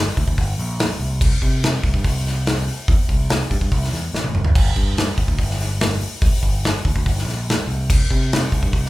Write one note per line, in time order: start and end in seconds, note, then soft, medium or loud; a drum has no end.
0.17 0.25 D2 loud
0.17 kick medium
0.17 open hi-hat medium
0.28 0.35 D2 medium
0.28 kick medium
0.38 0.54 G1 loud
0.38 kick medium
0.38 open hi-hat medium
0.58 0.90 A#1 loud
0.58 open hi-hat medium
0.79 snare loud
0.79 open hi-hat medium
0.99 1.31 C2 loud
0.99 open hi-hat medium
1.21 kick loud
1.21 crash loud
1.42 1.74 C3 medium
1.42 kick medium
1.42 open hi-hat medium
1.63 snare loud
1.63 open hi-hat medium
1.83 1.91 C2 loud
1.83 kick loud
1.83 open hi-hat medium
1.94 2.02 G2 medium
1.94 kick medium
2.04 2.68 C2 loud
2.04 kick loud
2.04 open hi-hat loud
2.26 snare soft
2.26 open hi-hat medium
2.46 snare loud
2.46 open hi-hat medium
2.67 open hi-hat medium
2.88 2.96 E2 loud
2.88 kick loud
2.88 open hi-hat medium
3.09 3.40 C2 medium
3.09 kick medium
3.09 open hi-hat medium
3.29 snare loud
3.29 open hi-hat medium
3.51 3.58 G2 loud
3.51 kick medium
3.51 open hi-hat medium
3.61 3.69 G2 medium
3.61 kick medium
3.72 3.87 C2 loud
3.72 kick loud
3.72 open hi-hat medium
3.84 snare soft
3.92 4.08 E2 medium
3.92 snare soft
3.92 open hi-hat medium
4.14 4.32 A1 medium
4.14 snare medium
4.24 high tom medium
4.34 4.53 G1 medium
4.34 mid tom medium
4.45 floor tom medium
4.55 4.71 G1 loud
4.55 kick loud
4.55 crash loud
4.76 5.08 G2 loud
4.76 kick medium
4.76 open hi-hat medium
4.97 snare loud
4.97 open hi-hat medium
5.18 5.25 G1 loud
5.18 kick medium
5.18 open hi-hat medium
5.28 5.36 D2 medium
5.28 kick medium
5.39 6.02 G1 medium
5.39 kick medium
5.39 open hi-hat medium
5.50 snare soft
5.60 snare soft
5.60 open hi-hat medium
5.80 snare loud
5.80 open hi-hat medium
6.01 open hi-hat medium
6.22 6.30 A#1 loud
6.22 kick loud
6.22 open hi-hat loud
6.43 6.74 G1 medium
6.43 kick medium
6.43 open hi-hat medium
6.64 snare loud
6.64 open hi-hat medium
6.85 6.93 D2 loud
6.85 kick medium
6.85 open hi-hat medium
6.96 7.03 D2 medium
6.96 kick medium
7.06 7.22 G1 loud
7.06 kick loud
7.06 open hi-hat medium
7.18 snare soft
7.25 7.57 A#1 loud
7.25 snare soft
7.25 open hi-hat medium
7.49 snare loud
7.49 open hi-hat medium
7.67 7.99 C2 loud
7.67 open hi-hat medium
7.90 kick loud
7.90 crash loud
8.11 8.42 C3 medium
8.11 kick medium
8.11 open hi-hat medium
8.32 snare loud
8.32 open hi-hat medium
8.52 8.60 C2 loud
8.52 kick medium
8.52 open hi-hat medium
8.63 8.71 G2 medium
8.63 kick medium
8.73 8.89 C2 medium
8.73 kick loud
8.73 open hi-hat medium
8.85 snare soft